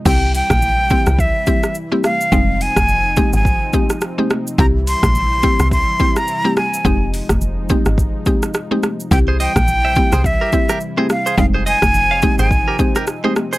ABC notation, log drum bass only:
X:1
M:4/4
L:1/16
Q:"Swing 16ths" 1/4=106
K:Fm
V:1 name="Log drum bass" clef=bass
C,,3 B,,,4 C,,2 z6 z | F,,,3 F,,,4 A,,,2 z6 z | C,,3 B,,,4 C,,2 z6 z | F,,,3 F,,,4 A,,,2 z6 z |
C,,3 B,,,4 C,,2 z6 z | F,,,3 F,,,4 A,,,2 z6 z |]